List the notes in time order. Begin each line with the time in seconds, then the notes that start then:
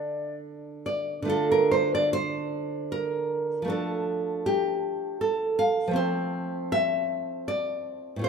Already playing: D3 D4 D5
0.86 D5
1.22 D3 A3
1.28 F4 A4
1.51 A#4
1.71 C5
1.95 D5
2.13 C5
2.92 A#4
3.62 F3 A3
3.68 D4 A4
4.46 G4
5.21 A4
5.59 F5
5.88 F3 A3
5.93 C4 C5
6.72 E5
7.48 D5
8.16 A2 A3
8.21 F4 C5